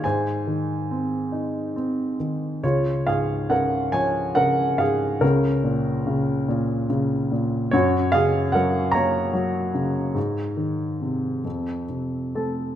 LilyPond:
<<
  \new Staff \with { instrumentName = "Grand piano" } { \time 6/8 \key des \major \tempo 4. = 47 <c'' aes''>2~ <c'' aes''>8 r8 | <f' des''>8 <aes' f''>8 <bes' ges''>8 <des'' aes''>8 <bes' ges''>8 <aes' f''>8 | <des' bes'>2 r4 | <ges' des''>8 <aes' f''>8 <bes' ges''>8 <des'' bes''>4.~ |
<des'' bes''>2 r8 <c' a'>8 | }
  \new Staff \with { instrumentName = "Grand piano" } { \clef bass \time 6/8 \key des \major aes,8 ees8 c'8 ees'8 c'8 ees8 | des,8 aes,8 des8 f8 des8 aes,8 | des,8 bes,8 des8 bes,8 des8 bes,8 | ges,8 des8 ges8 bes8 ges8 des8 |
aes,8 ees8 c8 f,8 c8 a8 | }
>>